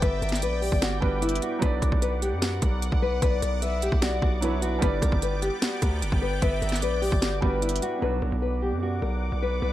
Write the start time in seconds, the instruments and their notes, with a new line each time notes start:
Already playing: grand piano G3 B3 D4 D5, analog synth pad B3 D5 G5 D6
0.02 808-style bass G1, nylon-string guitar B4, soft synth lead E5, kick, closed hi-hat
0.22 808-style bass G1, nylon-string guitar A#4, closed hi-hat
0.29 snare, closed hi-hat
0.35 closed hi-hat
0.42 808-style bass A#1, nylon-string guitar B4, soft synth lead D5, closed hi-hat
0.62 nylon-string guitar G4, open hi-hat
0.72 808-style bass G1, kick
0.82 nylon-string guitar F#4, snare, closed hi-hat
1.01 808-style bass G1, grand piano G3 B3 D4 B4, nylon-string guitar F#4, soft synth lead B4, kick
1.22 nylon-string guitar E4, closed hi-hat
1.29 closed hi-hat
1.35 closed hi-hat
1.42 nylon-string guitar F#4, closed hi-hat
1.59 808-style bass B1, grand piano F#3 B3, nylon-string guitar B4, analog synth pad F#5, kick, closed hi-hat
1.63 grand piano D4 D5
1.82 808-style bass B1, nylon-string guitar A#4, kick, closed hi-hat
1.92 808-style bass B1, kick
2.02 nylon-string guitar B4, closed hi-hat
2.22 nylon-string guitar G4, closed hi-hat
2.32 808-style bass F#2
2.42 nylon-string guitar F#4, snare, closed hi-hat
2.62 808-style bass B1, nylon-string guitar A#4, kick, closed hi-hat
2.82 closed hi-hat
2.92 808-style bass B1, kick
3.02 nylon-string guitar B4, soft synth lead F#5
3.22 808-style bass B1, nylon-string guitar B4, soft synth lead D5, kick, closed hi-hat
3.42 808-style bass B1, nylon-string guitar A#4, closed hi-hat
3.62 nylon-string guitar B4, soft synth lead E5, closed hi-hat
3.82 nylon-string guitar G4, closed hi-hat
3.92 808-style bass B1, kick
4.02 nylon-string guitar F#4, soft synth lead D5, snare, closed hi-hat
4.22 808-style bass B1, nylon-string guitar F#4, kick
4.41 grand piano F#3 B3 D4 B4, nylon-string guitar E4, soft synth lead C#5, closed hi-hat
4.62 nylon-string guitar F#4, soft synth lead B4, closed hi-hat
4.79 808-style bass G1, grand piano G3 B3, analog synth pad B3 D5 G5 D6, nylon-string guitar B4, kick, closed hi-hat
4.83 grand piano D4 D5
5.02 808-style bass B1, nylon-string guitar A#4, kick, closed hi-hat
5.12 808-style bass G1, kick
5.22 nylon-string guitar B4, closed hi-hat
5.42 nylon-string guitar G4, closed hi-hat
5.62 nylon-string guitar F#4, snare, closed hi-hat
5.82 808-style bass D2, nylon-string guitar A#4, kick, closed hi-hat
6.02 808-style bass F#1, closed hi-hat
6.12 808-style bass G1, kick
6.22 nylon-string guitar B4, soft synth lead G5
6.42 808-style bass G1, nylon-string guitar B4, soft synth lead E5, kick, closed hi-hat
6.62 808-style bass G1, nylon-string guitar A#4, closed hi-hat
6.69 snare, closed hi-hat
6.76 closed hi-hat
6.82 808-style bass A#1, nylon-string guitar B4, soft synth lead D5, closed hi-hat
7.02 nylon-string guitar G4, open hi-hat
7.12 808-style bass G1, kick
7.22 nylon-string guitar F#4, snare, closed hi-hat
7.41 808-style bass G1, grand piano G3 B3 D4 B4, nylon-string guitar F#4, soft synth lead B4, kick
7.62 nylon-string guitar E4, closed hi-hat
7.69 closed hi-hat
7.76 closed hi-hat
7.82 nylon-string guitar F#4, closed hi-hat
7.99 808-style bass B1, grand piano B2 F#3, analog synth pad B3 D5 F#5 D6, nylon-string guitar B4
8.03 grand piano D4 F#4
8.22 808-style bass B1, nylon-string guitar A#4
8.32 808-style bass B1
8.42 nylon-string guitar B4
8.62 nylon-string guitar G4
8.72 808-style bass F#2
8.82 nylon-string guitar F#4
9.02 808-style bass B1, nylon-string guitar A#4
9.32 808-style bass B1
9.42 nylon-string guitar B4
9.62 808-style bass B1, nylon-string guitar B4